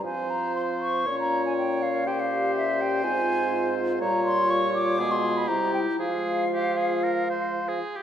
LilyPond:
<<
  \new Staff \with { instrumentName = "Flute" } { \time 4/4 \key f \minor \tempo 4 = 121 aes''8 bes''8 c'''8 des'''8. bes''8 aes''16 g''8 f''8 | g''16 f''8. e''8 g''8 aes''4. r8 | bes''8 c'''8 des'''8 d'''8. c'''8 b''16 bes''8 g''8 | f''2.~ f''8 r8 | }
  \new Staff \with { instrumentName = "Oboe" } { \time 4/4 \key f \minor c''2 des''2 | c''1 | des''2 gis'4 g'4 | aes'4 g'8 aes'8 bes'8 c''8. aes'8 g'16 | }
  \new Staff \with { instrumentName = "Clarinet" } { \time 4/4 \key f \minor f'1 | g'2 f'2~ | f'2. e'4 | f'2.~ f'8 r8 | }
  \new Staff \with { instrumentName = "French horn section" } { \time 4/4 \key f \minor << { f'1 | g'2 f'2~ | f'2. e'4 | f'2.~ f'8 r8 | } \\ { c'2 des'2~ | des'2 c'2 | g2 gis4 g4 | aes2.~ aes8 r8 | } >> }
  \new Staff \with { instrumentName = "Bassoon" } { \clef bass \time 4/4 \key f \minor f2 bes,2~ | bes,2 aes,2 | bes,2 b,4 c4 | f2.~ f8 r8 | }
>>